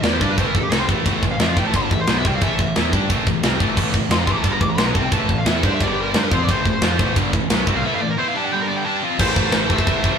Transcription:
0.03 picked electric bass E2, distorted electric guitar E3 B3 E4, lead electric guitar D5, snare, ride bell
0.13 lead electric guitar C5
0.21 picked electric bass G2, distorted electric guitar G3 D4 G4, lead electric guitar D5, kick
0.30 lead electric guitar B4
0.38 picked electric bass A1, distorted electric guitar A2 E3 A3, lead electric guitar C5, kick, ride bell
0.47 lead electric guitar A#4
0.55 picked electric bass A1, distorted electric guitar A2 E3, lead electric guitar A4, kick
0.63 lead electric guitar G4
0.72 picked electric bass C2, distorted electric guitar C3 G3 C4, lead electric guitar A4, snare, ride bell
0.80 lead electric guitar C5
0.88 picked electric bass A1, distorted electric guitar A2 E3 A3, kick
1.06 picked electric bass A1, distorted electric guitar A2 E3 A3, kick, ride bell
1.22 picked electric bass A1, distorted electric guitar A2 E3, kick
1.31 lead electric guitar F5
1.40 picked electric bass F2, distorted electric guitar F3 C4 F4, lead electric guitar E5, snare, ride bell
1.50 lead electric guitar F5
1.57 picked electric bass A1, distorted electric guitar A2 E3 A3, lead electric guitar G5, kick
1.67 lead electric guitar A5
1.73 picked electric bass G1, distorted electric guitar G2 D3 G3, lead electric guitar C6, kick, ride bell
1.85 lead electric guitar A5
1.91 picked electric bass A1, distorted electric guitar A2 E3, lead electric guitar E5, kick
2.00 lead electric guitar C5
2.07 picked electric bass B1, distorted electric guitar B2 F#3 B3, lead electric guitar C5, snare, ride bell
2.18 lead electric guitar E5
2.25 picked electric bass C2, distorted electric guitar C3 G3 C4, lead electric guitar G5, kick
2.35 lead electric guitar F5
2.41 picked electric bass A1, distorted electric guitar A2 E3 A3, lead electric guitar E5, kick, ride bell
2.59 picked electric bass A1, distorted electric guitar A2 E3, kick
2.76 picked electric bass E2, distorted electric guitar E3 B3 E4, snare, ride bell
2.91 picked electric bass G2, distorted electric guitar G3 D4 G4, kick
3.08 picked electric bass A1, distorted electric guitar A2 E3 A3, kick, ride bell
3.27 picked electric bass A1, distorted electric guitar A2 E3, kick
3.43 picked electric bass C2, distorted electric guitar C3 G3 C4, snare, ride bell
3.60 picked electric bass A1, distorted electric guitar A2 E3 A3, kick
3.77 picked electric bass A1, distorted electric guitar A2 E3 A3, kick, crash
3.94 picked electric bass A1, distorted electric guitar A2 E3, kick
4.09 picked electric bass F2, distorted electric guitar F3 C4 F4, lead electric guitar C6, snare, ride bell
4.19 lead electric guitar A#5
4.27 picked electric bass A1, distorted electric guitar A2 E3 A3, lead electric guitar C6, kick
4.32 lead electric guitar D6
4.37 lead electric guitar A#5
4.42 picked electric bass G1, distorted electric guitar G2 D3 G3, lead electric guitar A5, kick, ride bell
4.51 lead electric guitar A#5
4.61 picked electric bass A1, distorted electric guitar A2 E3, lead electric guitar D6, kick
4.70 lead electric guitar A#5
4.76 picked electric bass B1, distorted electric guitar B2 F#3 B3, lead electric guitar C6, snare, ride bell
4.87 lead electric guitar A#5
4.94 picked electric bass C2, distorted electric guitar C3 G3 C4, lead electric guitar A5, kick
5.05 lead electric guitar G5
5.11 picked electric bass A1, distorted electric guitar A2 E3 A3, lead electric guitar A5, kick, ride bell
5.29 picked electric bass A1, distorted electric guitar A2 E3, kick
5.38 lead electric guitar F5
5.45 picked electric bass E2, distorted electric guitar E3 B3 E4, lead electric guitar E5, snare, ride bell
5.56 lead electric guitar A4
5.63 picked electric bass G2, distorted electric guitar G3 D4 G4, lead electric guitar C5, kick
5.74 lead electric guitar E5
5.80 picked electric bass G1, distorted electric guitar G2 D3 G3, lead electric guitar D5, kick, ride bell
5.93 lead electric guitar G4
6.02 lead electric guitar A#4
6.10 picked electric bass G2, distorted electric guitar G3 D4, lead electric guitar D5
6.14 distorted electric guitar G4, lead electric guitar C5, snare, ride bell
6.25 lead electric guitar A#4
6.31 picked electric bass F2, distorted electric guitar F3 C4 F4, lead electric guitar C5, kick
6.43 lead electric guitar D5
6.47 picked electric bass A1, distorted electric guitar A2 E3 A3, lead electric guitar C5, kick, ride bell
6.65 picked electric bass A1, distorted electric guitar A2 E3, kick
6.82 picked electric bass F2, distorted electric guitar F3 C4 F4, snare, ride bell
6.99 picked electric bass A1, distorted electric guitar A2 E3 A3, kick
7.16 picked electric bass G1, distorted electric guitar G2 D3 G3, kick, ride bell
7.33 picked electric bass A1, distorted electric guitar A2 E3, kick
7.50 picked electric bass B1, distorted electric guitar B2 F#3 B3, snare, ride bell
7.66 picked electric bass C2, distorted electric guitar C3 G3 C4, kick
7.76 lead electric guitar F5
7.83 distorted electric guitar A2 E3 A3, lead electric guitar E5
7.95 lead electric guitar F5
8.01 distorted electric guitar A2 E3, lead electric guitar D5
8.10 lead electric guitar A#4
8.18 distorted electric guitar E3 B3 E4, lead electric guitar C5
8.28 lead electric guitar F5
8.35 distorted electric guitar G3 D4 G4, lead electric guitar A5
8.45 lead electric guitar F#5
8.52 distorted electric guitar G2 D3 G3, lead electric guitar G5
8.61 lead electric guitar A#4
8.68 lead electric guitar D5
8.76 lead electric guitar G5
8.85 distorted electric guitar G3 D4 G4, lead electric guitar A5
9.03 distorted electric guitar F3 C4 F4
9.19 picked electric bass A1, distorted electric guitar A2 E3 A3, lead electric guitar A4 C5, kick, crash, china
9.36 picked electric bass A1, distorted electric guitar A2 E3 A3, kick
9.52 picked electric bass A1, distorted electric guitar A2 E3 A3, snare, china
9.70 distorted electric guitar A2 E3 A3, lead electric guitar C5 E5, kick
9.78 kick
9.86 picked electric bass A1, distorted electric guitar A2 E3 A3, kick, china
10.04 distorted electric guitar A2 E3 A3, kick

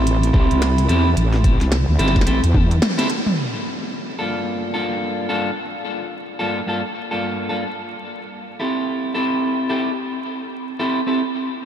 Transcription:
Already playing: wobble bass A1, clean electric guitar C4 E4 G4 A4
0.07 closed hi-hat
0.23 closed hi-hat
0.33 wobble bass C2, clean electric guitar C4 E4 G4 A4, kick
0.51 wobble bass C2, closed hi-hat
0.62 snare, closed hi-hat
0.78 closed hi-hat
0.88 wobble bass E2, clean electric guitar C4 E4 G4 A4, closed hi-hat
1.17 wobble bass A1, closed hi-hat
1.34 snare
1.44 kick, closed hi-hat
1.61 wobble bass C2, snare, closed hi-hat
1.72 snare, closed hi-hat
1.89 wobble bass D2
1.99 wobble bass G1, clean electric guitar C4 E4 G4 A4, snare, closed hi-hat
2.08 snare
2.16 kick, snare
2.21 snare
2.26 wobble bass A1, clean electric guitar C4 E4 G4 A4, closed hi-hat
2.44 wobble bass E2, closed hi-hat
2.54 kick, high tom
2.71 closed hi-hat
2.82 snare, closed hi-hat, mid tom
2.98 clean electric guitar C4 E4 G4 A4, snare, closed hi-hat
3.10 closed hi-hat
3.26 mid tom
3.37 crash
4.19 clean electric guitar G2 A#3 D4 F4 A4
4.74 clean electric guitar G2 A#3 D4 F4 A4
5.29 clean electric guitar G2 A#3 D4 F4 A4
6.39 clean electric guitar G2 A#3 D4 F4 A4
6.67 clean electric guitar G2 A#3 D4 F4 A4
7.11 clean electric guitar G2 A#3 D4 F4 A4
7.49 clean electric guitar G2 A#3 D4 F4 A4
8.60 clean electric guitar C4 E4 G4 A4
9.14 clean electric guitar C4 E4 G4 A4
9.69 clean electric guitar C4 E4 G4 A4
10.79 clean electric guitar C4 E4 G4 A4
11.07 clean electric guitar C4 E4 G4 A4

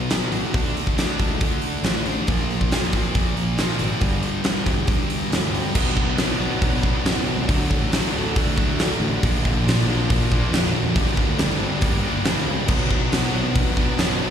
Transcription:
Already playing: distorted electric guitar B3
0.10 distorted electric guitar B2 F#3 B3, snare, open hi-hat
0.32 fingered electric bass A1, distorted electric guitar B2 F#3 B3, open hi-hat
0.54 fingered electric bass D2, distorted electric guitar D3 A3 D4, kick, open hi-hat
0.77 open hi-hat
0.87 kick
0.96 distorted electric guitar D3 A3 D4, snare, open hi-hat
1.19 fingered electric bass C#2, distorted electric guitar D3 A3 D4, kick, open hi-hat
1.41 distorted electric guitar D3 A3 D4, kick, open hi-hat
1.62 open hi-hat
1.83 fingered electric bass A1, distorted electric guitar D3 A3 D4, snare, open hi-hat
2.06 fingered electric bass A1, distorted electric guitar D3 A3 D4, open hi-hat
2.27 fingered electric bass A#1, distorted electric guitar A#2 F3 A#3, kick, open hi-hat
2.48 fingered electric bass A#1, open hi-hat
2.61 kick
2.71 fingered electric bass F2, distorted electric guitar A#2 F3 A#3, snare, open hi-hat
2.92 distorted electric guitar A#2 F3 A#3, kick, open hi-hat
3.15 fingered electric bass F2, distorted electric guitar A#2 F3 A#3, kick, open hi-hat
3.35 fingered electric bass A#1, open hi-hat
3.58 distorted electric guitar A#2 F3 A#3, snare, open hi-hat
3.79 fingered electric bass G#1, distorted electric guitar A#2 F3 A#3, open hi-hat
4.01 fingered electric bass G1, distorted electric guitar G2 D3 G3, kick, open hi-hat
4.23 open hi-hat
4.44 distorted electric guitar G2 D3 G3, snare, open hi-hat
4.66 fingered electric bass E1, distorted electric guitar G2 D3 G3, kick, open hi-hat
4.86 distorted electric guitar G2 D3 G3, kick, open hi-hat
5.10 open hi-hat
5.30 fingered electric bass D2, distorted electric guitar G2 D3 G3, snare, open hi-hat
5.52 fingered electric bass D2, distorted electric guitar G2 D3 G3, open hi-hat
5.74 fingered electric bass B1, distorted electric guitar B2 F#3 B3 D4, kick, crash
5.97 kick
6.08 fingered electric bass B1
6.15 distorted electric guitar B2 F#3 B3 D4, snare, open hi-hat
6.38 fingered electric bass B1, distorted electric guitar F#3 B3 D4
6.62 kick, open hi-hat
6.72 fingered electric bass B2
6.82 distorted electric guitar F#3 B3 D4, kick
7.04 fingered electric bass F#2, distorted electric guitar B2 F#3 B3 D4, snare, open hi-hat
7.37 fingered electric bass C#2
7.47 fingered electric bass D2, distorted electric guitar D3 F#3 A3 D4, kick, open hi-hat
7.71 kick
7.81 fingered electric bass A1
7.91 distorted electric guitar D3 F#3 A3 D4, snare, open hi-hat
8.12 fingered electric bass D2, distorted electric guitar F#3 A3 D4
8.36 kick, open hi-hat
8.46 fingered electric bass D2
8.56 distorted electric guitar F#3 A3 D4, kick
8.67 fingered electric bass D2
8.79 distorted electric guitar D3 F#3 A3 D4, snare, open hi-hat
9.00 fingered electric bass A1
9.21 fingered electric bass A#1, distorted electric guitar A#2 D3 F3 A#3 D4, kick, open hi-hat
9.45 kick
9.54 fingered electric bass A#1
9.66 distorted electric guitar D3 F3 A#3 D4, snare, open hi-hat
9.87 fingered electric bass A#1, distorted electric guitar F3 A#3 D4
10.10 kick, open hi-hat
10.20 fingered electric bass A#2
10.32 distorted electric guitar F3 A#3 D4, kick
10.51 fingered electric bass F2, distorted electric guitar A#2 D3 F3 A#3, snare, open hi-hat
10.55 distorted electric guitar D4
10.84 fingered electric bass F2
10.96 fingered electric bass G1, distorted electric guitar G2 D3 G3 A#3 D4, kick, open hi-hat
11.17 kick
11.27 fingered electric bass D2
11.38 distorted electric guitar D3 G3 A#3 D4, snare, open hi-hat
11.60 fingered electric bass G1, distorted electric guitar G3 A#3 D4
11.81 kick, open hi-hat
11.91 fingered electric bass G1
12.05 distorted electric guitar G3 A#3 D4
12.12 fingered electric bass G1
12.25 fingered electric bass D2, distorted electric guitar G2 D3 G3 A#3 D4, snare, open hi-hat
12.47 fingered electric bass C#2
12.67 fingered electric bass B1, distorted electric guitar B2 F#3 B3 D4, kick, crash
12.91 kick
13.01 fingered electric bass B1
13.12 distorted electric guitar B2 F#3 B3 D4, snare, open hi-hat
13.32 fingered electric bass B1, distorted electric guitar F#3 B3 D4
13.55 kick, open hi-hat
13.66 fingered electric bass B2
13.77 distorted electric guitar F#3 B3 D4, kick
13.96 fingered electric bass F#2, distorted electric guitar B2 F#3 B3 D4, snare, open hi-hat

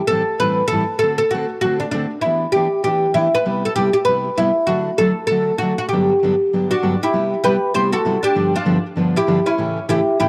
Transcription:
0.07 steel-string acoustic guitar A2 E3 G3 C4 E4 A4, oud A4
0.40 steel-string acoustic guitar A2 E3 G3 C4 E4 A4, oud B4
0.68 oud A4
0.72 steel-string acoustic guitar A2 E3 G3 C4 E4 A4
0.99 steel-string acoustic guitar D3, oud A4
1.03 steel-string acoustic guitar A3 C4 F#4 A4
1.18 oud A4
1.31 steel-string acoustic guitar D3 A3 C4 F#4, oud F#4
1.35 steel-string acoustic guitar A4
1.61 steel-string acoustic guitar D3 A3 C4 F#4, oud F#4
1.66 steel-string acoustic guitar A4
1.80 oud D4
1.91 steel-string acoustic guitar D3 A3 C4 F#4 A4, oud D4
2.21 steel-string acoustic guitar E3 B3 D4, oud E4
2.26 steel-string acoustic guitar G4
2.52 steel-string acoustic guitar E3 B3, oud G4
2.56 steel-string acoustic guitar D4 G4
2.84 steel-string acoustic guitar E3 B3 D4 G4, oud G4
3.14 steel-string acoustic guitar E3 B3 D4 G4, oud E4
3.35 oud B4
3.45 steel-string acoustic guitar C3 G3 B3 E4 G4
3.65 oud A4
3.76 steel-string acoustic guitar C3 G3 B3 E4 G4, oud G4
3.93 oud G4
4.05 steel-string acoustic guitar C3 G3 B3, oud B4
4.09 steel-string acoustic guitar E4 G4
4.38 steel-string acoustic guitar C3 G3 B3 E4 G4, oud E4
4.67 steel-string acoustic guitar D3 F#3 A3 D4 F#4, oud F#4
4.98 steel-string acoustic guitar D3 F#3 A3 D4 F#4, oud A4
5.27 steel-string acoustic guitar D3 A3, oud A4
5.31 steel-string acoustic guitar F#3 D4 F#4
5.58 steel-string acoustic guitar D3 F#3 A3, oud F#4
5.62 steel-string acoustic guitar D4 F#4
5.78 oud F#4
5.89 steel-string acoustic guitar G2, oud G4
5.93 steel-string acoustic guitar D3 F#3 B3 D4 G4
6.23 steel-string acoustic guitar G2 D3 F#3 B3 D4 G4
6.53 steel-string acoustic guitar G2 D3 F#3 B3 D4 G4
6.71 oud D4 F#4
6.82 steel-string acoustic guitar G2 D3 F#3 B3 D4 G4
7.03 oud E4 G4
7.13 steel-string acoustic guitar C3 G3 B3 E4 G4
7.44 steel-string acoustic guitar C3 G3 B3 E4 G4, oud G4 B4
7.74 steel-string acoustic guitar C3 G3 B3 E4 G4, oud G4 C5
7.92 oud F#4 A4
8.05 steel-string acoustic guitar C3 G3 B3 E4 G4
8.23 oud D4 G4
8.35 steel-string acoustic guitar G2 D3 F3 B3 D4 G4
8.56 oud D4 F4
8.65 steel-string acoustic guitar G2 D3 F3 B3 D4 G4
8.96 steel-string acoustic guitar G2 D3 F3 B3 D4 G4
9.16 oud E4 G4
9.27 steel-string acoustic guitar G2 D3 F3 B3 D4 G4
9.46 oud C#4 E4
9.58 steel-string acoustic guitar A2 C#3 E3 A3 C#4 G4
9.88 steel-string acoustic guitar A2 C#3 E3 A3 C#4 G4, oud E4 G4
10.19 steel-string acoustic guitar A2 C#3 E3 A3 C#4 G4, oud E4 G4

